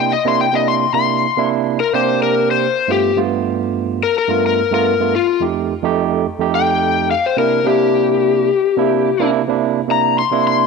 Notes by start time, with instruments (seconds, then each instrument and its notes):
Already playing: tine electric piano C3 A#3 D4 E4
0.00 electric slide guitar G5
0.13 electric slide guitar D#5
0.25 tine electric piano C3 A#3 D4 E4, electric slide guitar C6
0.41 electric slide guitar G5
0.53 tine electric piano C3 A#3 D4 E4, electric slide guitar D#5
0.68 electric slide guitar C6
0.93 tine electric piano C3 A#3 D4 E4, electric slide guitar C6
1.37 tine electric piano C3 A#3 D4 E4
1.80 electric slide guitar A#4
1.93 tine electric piano C3 A#3 D4 G4, electric slide guitar C5
2.23 electric slide guitar A#4
2.51 electric slide guitar C5
2.88 tine electric piano G2 A3 B3 F4, electric slide guitar G4
3.16 tine electric piano G2 A3 B3 F4
4.03 electric slide guitar A#4
4.18 electric slide guitar A#4
4.28 tine electric piano G2 A3 B3 F4
4.46 electric slide guitar A#4
4.71 tine electric piano G2 A3 B3 F4, electric slide guitar A#4
5.00 tine electric piano G2 A3 B3 F4
5.16 electric slide guitar F4
5.40 tine electric piano F2 A3 D#4 G4
5.83 tine electric piano F2 A3 D#4 G4
6.39 tine electric piano F2 A3 D#4 G4
6.55 electric slide guitar G5
7.11 electric slide guitar F5
7.26 electric slide guitar C5
7.37 tine electric piano C3 A#3 D4 E4, electric slide guitar A#4
7.64 tine electric piano C3 A#3 D4 E4, electric slide guitar G4
8.77 tine electric piano C3 A#3 D4 E4
9.20 tine electric piano C3 A#3 D4 E4
9.48 tine electric piano C3 A#3 D4 E4
9.88 tine electric piano C3 A#3 D4 E4, electric slide guitar A#5
10.19 electric slide guitar C6
10.31 tine electric piano C3 A#3 D4 E4
10.47 electric slide guitar C6